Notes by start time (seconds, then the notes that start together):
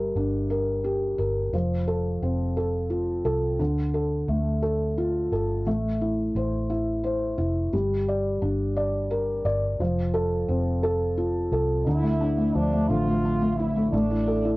Already playing: G1 G3 A#4
0.15 G1 D4
0.50 A#4
0.84 G4
1.18 G1 A#4
1.53 F1 F3
1.87 A4
2.22 F1 C4
2.57 A4
2.90 F4
3.25 C2 A4
3.59 D2 D3
3.94 A4
4.28 D2 A3
4.62 A4
4.98 F4
5.31 G1 A4
5.66 A1 A3
6.01 E4
6.35 A1 C5
6.70 E4
7.04 C5
7.38 F1 E4
7.73 G1 G3
8.08 D5
8.42 G1 D4
8.76 D5
9.10 A#4
9.45 G1 D5
9.79 F1 F3
10.14 A4
10.48 F1 C4
10.83 A4
11.18 F4
11.52 C2 A4
11.85 D2 D3 E4
12.03 A3
12.20 D4
12.37 A3
12.54 D2 F3 D4
12.72 A3
12.88 A1 D3 F4
13.08 A3
13.25 D4
13.42 A3
13.57 E4
13.76 A3
13.92 A1 A3 D4
14.11 E4
14.27 A4
14.45 E4